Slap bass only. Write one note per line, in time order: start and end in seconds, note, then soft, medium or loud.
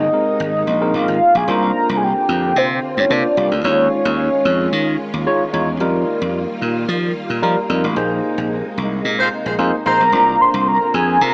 0.40 0.63 G#1 medium
0.67 0.90 A#1 medium
0.94 1.06 A#1 medium
1.08 1.19 G#1 medium
1.35 1.46 A#1 medium
1.48 1.71 C2 loud
1.89 2.12 C2 loud
2.29 2.52 F2 medium
2.56 2.79 C3 loud
2.97 3.08 G2 medium
3.10 3.22 C3 medium
3.37 3.49 C2 loud
3.51 3.62 D2 medium
3.64 3.87 D#2 loud
4.05 4.28 D#2 loud
4.45 4.68 F2 medium
4.72 4.95 D#3 loud
5.14 5.24 D#2 medium
5.54 5.76 E2 loud
5.80 6.03 F2 loud
6.22 6.45 F2 loud
6.62 6.85 A#2 medium
6.88 7.11 F3 loud
7.30 7.41 A#2 medium
7.43 7.55 F3 medium
7.70 7.82 F2 medium
7.84 7.95 A1 medium
7.96 8.19 A#1 loud
8.38 8.61 A#1 medium
8.78 9.01 C2 medium
9.05 9.28 A#2 loud
9.46 9.57 A#1 medium
9.59 9.71 F2 medium
9.86 9.98 A#1 medium
10.00 10.11 B1 medium
10.12 10.36 C2 loud
10.54 10.77 C2 loud
10.94 11.17 F2 medium
11.21 11.34 C3 loud